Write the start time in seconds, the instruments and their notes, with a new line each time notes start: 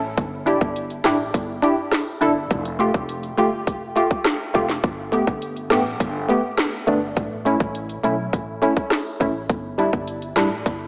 Already playing: upright bass A1
0.17 upright bass G1, kick, closed hi-hat
0.46 synth stab D4 E4 G4, closed hi-hat
0.61 upright bass G1, kick
0.76 closed hi-hat
0.90 closed hi-hat
1.04 upright bass A1, synth stab D4 E4 G4, cross-stick, snare, closed hi-hat
1.34 upright bass G1, kick, closed hi-hat
1.62 synth stab D4 E4 G4, closed hi-hat
1.91 cross-stick, snare, closed hi-hat
2.21 upright bass G1, synth stab D4 E4 A4, closed hi-hat
2.51 upright bass F1, kick, closed hi-hat
2.65 closed hi-hat
2.79 synth stab A3 F4 G4, closed hi-hat
2.94 upright bass F1, kick
3.09 closed hi-hat
3.23 closed hi-hat
3.38 upright bass G1, synth stab A3 F4 G4, closed hi-hat
3.67 upright bass F1, kick, closed hi-hat
3.96 synth stab A3 F4 G4, closed hi-hat
4.11 kick
4.24 cross-stick, snare, closed hi-hat
4.54 upright bass F1, synth stab A3 F4 G4, kick, closed hi-hat
4.69 snare
4.84 upright bass G1, kick, closed hi-hat
5.12 synth stab A3 B3 G4, closed hi-hat
5.27 upright bass G1, kick
5.42 closed hi-hat
5.56 closed hi-hat
5.70 upright bass A1, synth stab A3 B3 G4, cross-stick, snare, closed hi-hat
6.00 upright bass G1, kick, closed hi-hat
6.29 synth stab A3 B3 G4, closed hi-hat
6.57 cross-stick, snare, closed hi-hat
6.87 upright bass G1, synth stab A3 B3 D4, closed hi-hat
7.17 upright bass A1, kick, closed hi-hat
7.45 synth stab A3 C#4 E4, closed hi-hat
7.60 upright bass A1, kick
7.75 closed hi-hat
7.89 closed hi-hat
8.03 upright bass B1, synth stab A3 C#4 E4, closed hi-hat
8.33 upright bass A1, kick, closed hi-hat
8.62 synth stab A3 C#4 E4, closed hi-hat
8.77 kick
8.90 cross-stick, snare, closed hi-hat
9.20 upright bass A1, synth stab A3 C#4 E4, kick, closed hi-hat
9.49 upright bass G1, kick, closed hi-hat
9.78 synth stab G3 D4 E4, closed hi-hat
9.93 upright bass G1, kick
10.08 closed hi-hat
10.22 closed hi-hat
10.36 upright bass A1, synth stab G3 D4 E4, cross-stick, snare, closed hi-hat
10.66 upright bass G1, kick, closed hi-hat